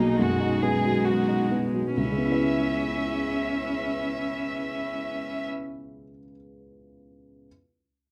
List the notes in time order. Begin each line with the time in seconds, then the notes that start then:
Already playing: B1 B2 F#3 A#3 D#4 G#4
0.00 F#3
0.18 F#2 G#3 F#4
0.40 D#4
0.62 B3 G#4
0.85 F#3
1.06 F#4
1.28 D#4
1.51 B3
1.74 F#3
1.97 C#2 G#3 C#4 E4 B4 E5
2.04 C#3
2.11 G#3
2.18 B3
2.25 E4
2.32 B4